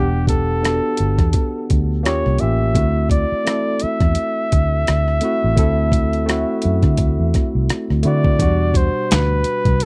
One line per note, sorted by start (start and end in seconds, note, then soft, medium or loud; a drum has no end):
0.00 0.79 E1 loud
0.00 0.53 B3 medium
0.00 0.54 D4 medium
0.00 0.28 G4 medium
0.00 0.55 G4 medium
0.00 0.54 F#5 medium
0.27 1.75 A4 medium
0.27 kick medium
0.27 closed hi-hat medium
0.62 1.84 B3 medium
0.62 1.85 D4 medium
0.62 1.85 F#4 medium
0.62 1.86 A4 medium
0.62 cross-stick loud
0.62 closed hi-hat medium
0.97 1.17 G1 medium
0.97 closed hi-hat medium
1.18 1.33 E2 medium
1.18 kick medium
1.18 cross-stick soft
1.18 closed hi-hat soft
1.33 kick loud
1.33 closed hi-hat medium
1.70 2.06 D2 medium
1.70 kick medium
1.70 closed hi-hat medium
2.03 2.23 D#2 medium
2.03 2.34 A#3 medium
2.03 2.35 C#4 medium
2.03 2.35 F4 medium
2.03 2.36 G4 medium
2.03 2.42 C#5 medium
2.03 cross-stick loud
2.03 closed hi-hat medium
2.26 2.39 C2 medium
2.26 cross-stick soft
2.38 2.72 A1 medium
2.38 2.70 A#3 medium
2.38 2.70 C#4 medium
2.38 2.71 F4 medium
2.38 3.11 E5 medium
2.38 closed hi-hat medium
2.43 2.72 G4 medium
2.74 3.24 D2 medium
2.74 3.35 A3 medium
2.74 3.36 C4 medium
2.74 3.37 E4 medium
2.74 3.37 F#4 medium
2.74 kick loud
2.74 closed hi-hat medium
3.10 3.84 D5 loud
3.10 kick medium
3.10 closed hi-hat medium
3.32 muted fingered electric bass stroke soft
3.44 4.66 A3 medium
3.44 4.67 C4 medium
3.44 4.68 E4 medium
3.44 cross-stick loud
3.44 closed hi-hat medium
3.48 4.68 A4 medium
3.80 7.70 E5 loud
3.80 muted fingered electric bass stroke soft
3.80 closed hi-hat medium
4.00 4.15 E2 medium
4.00 kick medium
4.00 cross-stick soft
4.00 closed hi-hat soft
4.15 closed hi-hat medium
4.52 4.84 D2 medium
4.52 kick medium
4.52 closed hi-hat medium
4.87 5.19 D2 medium
4.87 cross-stick loud
4.87 closed hi-hat medium
5.08 cross-stick soft
5.21 5.52 A3 medium
5.21 5.53 C4 medium
5.21 5.53 E4 medium
5.21 5.54 F#4 medium
5.21 closed hi-hat medium
5.44 5.57 A1 medium
5.55 6.44 D2 loud
5.55 6.18 A3 medium
5.55 6.18 C4 medium
5.55 6.19 E4 medium
5.55 6.19 A4 medium
5.55 kick loud
5.55 closed hi-hat medium
5.92 kick medium
5.92 closed hi-hat medium
6.13 closed hi-hat soft
6.26 7.48 A3 medium
6.26 7.49 C4 medium
6.26 7.50 E4 medium
6.26 7.50 F#4 medium
6.26 cross-stick loud
6.26 closed hi-hat medium
6.62 6.82 F#2 medium
6.62 closed hi-hat medium
6.82 6.97 D3 loud
6.82 kick medium
6.82 cross-stick soft
6.82 closed hi-hat soft
6.97 7.16 D2 medium
6.97 kick loud
6.97 closed hi-hat medium
7.20 7.33 E2 medium
7.34 kick medium
7.34 cross-stick soft
7.34 closed hi-hat medium
7.55 7.68 C2 medium
7.69 cross-stick loud
7.69 closed hi-hat medium
7.90 8.04 D2 medium
7.90 cross-stick soft
8.03 8.36 D3 medium
8.03 8.34 A3 medium
8.03 8.35 C4 medium
8.03 8.35 E4 medium
8.03 8.36 F#4 medium
8.03 closed hi-hat medium
8.07 8.78 D5 loud
8.24 kick medium
8.38 8.89 E2 loud
8.38 9.61 B2 medium
8.38 8.46 F#3 medium
8.38 9.62 D4 medium
8.38 9.62 F#4 medium
8.38 kick loud
8.38 closed hi-hat medium
8.44 9.63 G3 medium
8.74 9.14 C5 medium
8.74 kick loud
8.74 closed hi-hat medium
9.11 9.43 D2 medium
9.11 9.84 B4 loud
9.11 snare loud
9.11 clap medium
9.11 closed hi-hat medium
9.44 closed hi-hat medium
9.65 9.80 C2 medium
9.65 kick medium
9.65 closed hi-hat soft
9.80 closed hi-hat medium